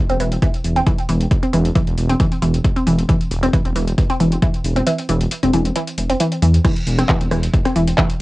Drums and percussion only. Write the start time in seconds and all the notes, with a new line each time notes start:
0.10 closed hi-hat
0.20 open hi-hat
0.32 closed hi-hat
0.42 kick, closed hi-hat
0.54 closed hi-hat
0.64 open hi-hat
0.76 closed hi-hat
0.87 kick, closed hi-hat
0.98 closed hi-hat
1.09 open hi-hat
1.21 closed hi-hat
1.31 kick, closed hi-hat
1.43 closed hi-hat
1.53 open hi-hat
1.65 closed hi-hat
1.76 kick, closed hi-hat
1.87 closed hi-hat
1.98 open hi-hat
2.10 closed hi-hat
2.20 kick, closed hi-hat
2.32 closed hi-hat
2.42 open hi-hat
2.54 closed hi-hat
2.64 kick, closed hi-hat
2.76 closed hi-hat
2.87 open hi-hat
2.99 closed hi-hat
3.09 kick, closed hi-hat
3.21 closed hi-hat
3.31 open hi-hat
3.43 closed hi-hat
3.53 kick, closed hi-hat
3.65 closed hi-hat
3.76 open hi-hat
3.87 closed hi-hat
3.98 kick, closed hi-hat
4.10 closed hi-hat
4.20 open hi-hat
4.32 closed hi-hat
4.42 kick, closed hi-hat
4.54 closed hi-hat
4.64 open hi-hat
4.76 closed hi-hat
4.87 closed hi-hat
4.98 closed hi-hat
5.09 open hi-hat
5.21 closed hi-hat
5.31 closed hi-hat
5.43 closed hi-hat
5.53 open hi-hat
5.65 closed hi-hat
5.76 closed hi-hat
5.87 closed hi-hat
5.98 open hi-hat
6.10 closed hi-hat
6.20 closed hi-hat
6.32 closed hi-hat
6.42 open hi-hat
6.54 closed hi-hat
6.65 kick, cross-stick, closed hi-hat, crash
6.76 closed hi-hat
6.87 open hi-hat
6.99 cross-stick, closed hi-hat
7.09 kick, clap, closed hi-hat
7.21 closed hi-hat
7.31 cross-stick, open hi-hat
7.43 closed hi-hat
7.53 kick, closed hi-hat
7.65 cross-stick, closed hi-hat
7.76 open hi-hat
7.87 closed hi-hat
7.98 kick, cross-stick, clap, closed hi-hat
8.10 closed hi-hat